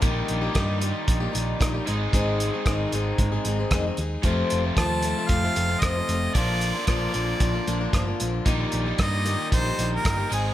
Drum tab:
HH |xxxxxxxx|xxxxxxxx|xxxxxxxx|xxxxxxxx|
SD |--r---r-|--r---r-|--r---r-|--r---r-|
BD |o-o-o-o-|o-o-o-o-|o-o-o-o-|o-o-o-o-|

HH |xxxxxxxx|
SD |--r---r-|
BD |o-o-o-o-|